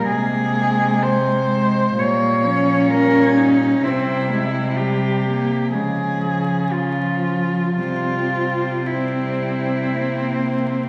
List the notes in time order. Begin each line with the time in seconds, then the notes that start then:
Already playing: G3 A#3
0.08 C3 G#3 G#4
1.02 G#3 C5
1.49 G#3
1.96 A#2 G3 A#3 C#5
2.43 F3 C#4
2.89 G3 A#4
3.37 D#4
3.82 C3 G3 C4 E4
4.31 G#3
4.75 G3 G4
5.25 A#3
5.72 C#3 F3 G#3 G#4
6.22 F3
6.71 F3 F4
7.76 C3 G3 C4 F4
8.86 G3 E4
9.95 A#3